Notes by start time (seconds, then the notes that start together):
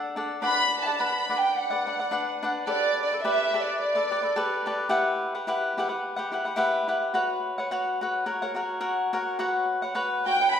Already playing: D4 A4 D5 F#5
0.16 D4 A4 D5 F#5
0.42 D4 B4 D5 F#5 B5
0.82 A5
0.86 B4 D5 F#5
0.99 D4 B4 D5 F#5 B5
1.29 D4 B4 D5 F#5
1.37 G5
1.56 F#5
1.70 B4 D5 F#5
1.87 D4 B4 D5 F#5
2.00 B4 D5 F#5
2.11 D4 B4 D5 F#5
2.43 D4 B4 D5 F#5
2.67 G4 A4 B4 D5
3.03 D5
3.12 A4 B4 D5
3.24 G4 A4 B4 D5 E5
3.54 G4 A4 B4 D5
3.62 D5
3.81 D5
3.95 A4 B4 D5
4.11 G4 A4 B4 D5
4.22 A4 B4 D5
4.36 G4 A4 B4 D5
4.66 G4 A4 B4 D5
4.89 E4 G4 B4 F#5
5.35 G4 B4 F#5
5.47 E4 G4 B4 F#5
5.77 E4 G4 B4 F#5
5.89 G4 B4 F#5
6.16 G4 B4 F#5
6.32 E4 G4 B4 F#5
6.45 G4 B4 F#5
6.56 E4 G4 B4 F#5
6.88 E4 G4 B4 F#5
7.14 F#4 B4 C#5 F#5
7.58 B4 C#5 F#5
7.71 F#4 B4 C#5 F#5
8.01 F#4 B4 C#5 F#5
8.26 F#4 A#4 C#5 F#5
8.42 A#4 C#5 F#5
8.54 F#4 A#4 C#5 F#5
8.81 F#4 A#4 C#5 F#5
9.13 F#4 A#4 C#5 F#5
9.39 F#4 B4 C#5 F#5
9.82 B4 C#5 F#5
9.95 F#4 B4 C#5 F#5
10.26 F#4 B4 C#5 F#5 G5
10.41 B4 C#5 F#5
10.52 B5